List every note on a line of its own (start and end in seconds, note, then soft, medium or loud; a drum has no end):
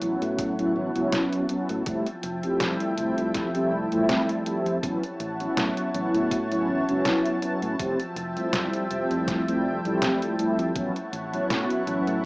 0.00 0.15 A1 medium
0.00 0.54 F#3 medium
0.00 0.54 B3 medium
0.00 0.54 C#4 medium
0.00 1.84 E4 medium
0.00 0.54 E4 medium
0.00 1.84 C#5 medium
0.00 1.84 F#5 medium
0.00 12.25 A5 medium
0.00 closed hi-hat medium
0.22 0.77 A2 medium
0.22 closed hi-hat soft
0.38 kick loud
0.38 closed hi-hat medium
0.58 0.91 F#3 medium
0.58 0.91 B3 medium
0.58 0.91 C#4 medium
0.58 0.91 E4 loud
0.58 closed hi-hat soft
0.76 0.89 A1 medium
0.95 1.07 C#2 medium
0.95 1.45 F#3 loud
0.95 1.45 B3 medium
0.95 1.46 C#4 medium
0.95 1.46 E4 loud
0.95 closed hi-hat soft
1.12 snare loud
1.12 closed hi-hat loud
1.33 closed hi-hat soft
1.49 1.82 F#3 medium
1.49 1.83 B3 medium
1.49 1.83 C#4 medium
1.49 1.83 E4 medium
1.49 closed hi-hat medium
1.69 1.81 A2 medium
1.69 closed hi-hat soft
1.86 2.00 F1 loud
1.86 4.80 F3 medium
1.86 2.06 G3 medium
1.86 2.06 A3 medium
1.86 2.06 C4 medium
1.86 2.07 E4 medium
1.86 4.80 E5 medium
1.86 4.80 G5 medium
1.86 kick loud
1.86 closed hi-hat medium
2.06 closed hi-hat soft
2.23 2.43 F1 loud
2.23 closed hi-hat medium
2.43 2.93 G3 medium
2.43 2.94 A3 medium
2.43 2.94 C4 medium
2.43 2.94 E4 medium
2.43 muted fingered electric bass stroke soft
2.43 closed hi-hat soft
2.60 2.75 F2 medium
2.60 snare loud
2.60 closed hi-hat medium
2.80 closed hi-hat soft
2.97 3.12 F1 medium
2.97 3.50 G3 medium
2.97 3.50 A3 medium
2.97 3.50 C4 medium
2.97 3.51 E4 medium
2.97 closed hi-hat medium
3.18 3.73 F2 medium
3.18 closed hi-hat soft
3.35 kick loud
3.35 snare medium
3.35 closed hi-hat loud
3.54 3.87 G3 medium
3.54 3.87 A3 medium
3.54 3.87 C4 medium
3.54 3.88 E4 medium
3.54 closed hi-hat soft
3.72 3.86 F1 medium
3.91 4.04 A1 medium
3.91 4.42 G3 loud
3.91 4.42 A3 medium
3.91 4.42 C4 medium
3.91 4.42 E4 loud
3.91 closed hi-hat soft
4.09 snare loud
4.09 closed hi-hat medium
4.29 closed hi-hat soft
4.45 4.78 G3 medium
4.45 4.79 A3 medium
4.45 4.79 C4 medium
4.45 4.79 E4 medium
4.45 closed hi-hat medium
4.66 4.77 F2 medium
4.66 closed hi-hat soft
4.82 4.97 A1 loud
4.82 5.02 F#3 medium
4.82 5.02 B3 medium
4.82 5.02 C#4 medium
4.82 7.76 E4 medium
4.82 5.03 E4 medium
4.82 7.76 C#5 medium
4.82 7.76 F#5 medium
4.82 kick loud
4.82 closed hi-hat medium
5.03 closed hi-hat soft
5.20 5.46 A1 loud
5.20 closed hi-hat medium
5.39 5.90 F#3 medium
5.39 5.90 B3 medium
5.39 5.90 C#4 medium
5.39 5.90 E4 medium
5.39 closed hi-hat soft
5.57 5.71 A2 medium
5.57 snare loud
5.57 closed hi-hat medium
5.77 closed hi-hat soft
5.94 6.08 A1 medium
5.94 6.46 F#3 medium
5.94 6.47 B3 medium
5.94 6.47 C#4 medium
5.94 6.47 E4 medium
5.94 closed hi-hat medium
6.14 6.70 A2 medium
6.14 closed hi-hat soft
6.31 kick loud
6.31 closed hi-hat loud
6.50 6.83 F#3 medium
6.50 6.83 B3 medium
6.50 6.84 C#4 medium
6.50 6.84 E4 medium
6.50 closed hi-hat soft
6.68 6.82 A1 medium
6.88 7.00 C#2 medium
6.88 7.38 F#3 loud
6.88 7.38 B3 medium
6.88 7.39 C#4 medium
6.88 7.39 E4 loud
6.88 closed hi-hat soft
7.05 snare loud
7.05 closed hi-hat medium
7.26 closed hi-hat soft
7.42 7.75 F#3 medium
7.42 7.75 B3 medium
7.42 7.75 C#4 medium
7.42 7.76 E4 loud
7.42 closed hi-hat medium
7.62 7.74 A2 medium
7.62 closed hi-hat soft
7.79 7.93 F1 loud
7.79 10.73 F3 medium
7.79 7.98 G3 medium
7.79 7.99 A3 medium
7.79 7.99 C4 medium
7.79 7.99 E4 medium
7.79 10.73 E5 medium
7.79 10.73 G5 medium
7.79 kick loud
7.79 closed hi-hat medium
8.00 closed hi-hat soft
8.16 8.36 F1 loud
8.16 closed hi-hat medium
8.36 8.86 G3 medium
8.36 8.86 A3 medium
8.36 8.87 C4 medium
8.36 8.87 E4 medium
8.36 muted fingered electric bass stroke soft
8.36 closed hi-hat soft
8.53 8.67 F2 medium
8.53 snare loud
8.53 closed hi-hat medium
8.73 closed hi-hat soft
8.89 9.04 F1 medium
8.89 9.42 G3 medium
8.89 9.43 A3 medium
8.89 9.43 C4 medium
8.89 9.43 E4 medium
8.89 closed hi-hat medium
9.11 9.66 F2 medium
9.11 closed hi-hat soft
9.28 kick loud
9.28 snare medium
9.28 closed hi-hat medium
9.47 9.80 G3 medium
9.47 9.80 A3 medium
9.47 9.80 C4 medium
9.47 9.80 E4 medium
9.47 closed hi-hat soft
9.65 9.78 F1 medium
9.84 9.96 A1 medium
9.84 10.34 G3 loud
9.84 10.35 A3 medium
9.84 10.35 C4 medium
9.84 10.35 E4 loud
9.84 closed hi-hat soft
10.02 snare loud
10.02 closed hi-hat medium
10.22 closed hi-hat soft
10.37 10.71 G3 medium
10.37 10.71 A3 medium
10.37 10.72 C4 medium
10.37 10.72 E4 medium
10.37 closed hi-hat medium
10.59 10.70 F2 medium
10.59 closed hi-hat soft
10.74 10.89 A1 medium
10.74 10.95 F#3 medium
10.74 10.95 B3 medium
10.74 10.95 C#4 medium
10.74 10.95 E4 medium
10.74 12.25 E4 medium
10.74 12.25 C#5 medium
10.74 12.25 F#5 medium
10.74 kick loud
10.74 closed hi-hat medium
10.96 closed hi-hat soft
11.13 11.39 A1 loud
11.13 closed hi-hat medium
11.32 11.82 F#3 medium
11.32 11.83 B3 medium
11.32 11.83 C#4 medium
11.32 11.83 E4 medium
11.32 closed hi-hat soft
11.50 11.64 A2 medium
11.50 snare loud
11.50 closed hi-hat medium
11.70 closed hi-hat soft
11.86 12.01 A1 medium
11.86 12.25 F#3 medium
11.86 12.25 B3 medium
11.86 12.25 C#4 medium
11.86 12.25 E4 medium
11.86 closed hi-hat medium
12.07 12.25 A2 medium
12.07 closed hi-hat soft